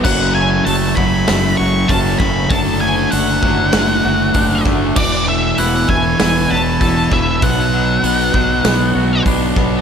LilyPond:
<<
  \new Staff \with { instrumentName = "Lead electric guitar" } { \time 4/4 \key d \lydian \tempo 4 = 98 fis''8 gis''8 a''8 b''4 cis'''8 a''8 b''8 | a''8 gis''8 fis''2~ fis''8 r8 | d''8 e''8 fis''8 gis''4 a''4 e''8 | fis''2. r4 | }
  \new Staff \with { instrumentName = "Clean electric guitar" } { \time 4/4 \key d \lydian fis8 a8 a8 fis8 a8 fis'8 cis'8 a8 | fis8 a8 a8 fis8 a8 fis'8 d'8 a8 | e8 a8 e'8 a8 e'8 b'8 a'8 e'8 | b,8 fis8 b8 fis8 b8 fis'8 d'8 b8 | }
  \new Staff \with { instrumentName = "Distorted electric guitar" } { \clef bass \time 4/4 \key d \lydian <fis, cis fis>4 <fis, cis fis>8 <fis, cis fis>8 <fis, cis fis>4 <fis, cis fis>8 <fis, cis fis>8 | <d a d'>4 <d a d'>8 <d a d'>8 <d a d'>4 <d a d'>8 <d a d'>8 | <e, b, e>4 <e, b, e>8 <e, b, e>8 <e, b, e>4 <e, b, e>8 <e, b, e>8 | <b, fis b>4 <b, fis b>8 <b, fis b>8 <b, fis b>4 <b, fis b>8 <b, fis b>8 | }
  \new Staff \with { instrumentName = "Fingered electric bass" } { \clef bass \time 4/4 \key d \lydian fis,,4 fis,,8 fis,,8 fis,,8 fis,,8 fis,,8 fis,,8 | fis,,4 fis,,8 fis,,8 fis,,8 fis,,8 fis,,8 fis,,8 | e,,4 e,,8 e,,8 e,,8 e,,8 e,,8 e,,8 | b,,4 b,,8 b,,8 b,,8 b,,8 b,,8 b,,8 | }
  \new DrumStaff \with { instrumentName = "Drums" } \drummode { \time 4/4 <cymc bd>4 hho8 bd8 <hho sn>4 <hho bd>8 <bd sn>8 | <hho bd>4 hho8 bd8 <hho sn>4 <hho bd>8 <bd sn>8 | <cymc bd>4 hho8 bd8 <hho sn>4 <hho bd>8 <bd sn>8 | <hho bd>4 hho8 bd8 <hho sn>4 <hho bd>8 <bd sn>8 | }
>>